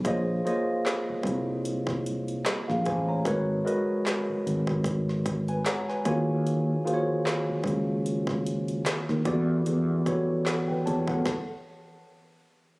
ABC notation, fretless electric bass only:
X:1
M:4/4
L:1/16
Q:"Swing 16ths" 1/4=75
K:Bbmix
V:1 name="Fretless electric bass" clef=bass
B,,,2 z4 C,,6 z B,,, =A,,,2 | A,,,2 z4 A,,,6 z2 E,,2- | E,,2 z4 _D,,6 z E,, =E,,2 | =E,,2 z4 E,,2 z8 |]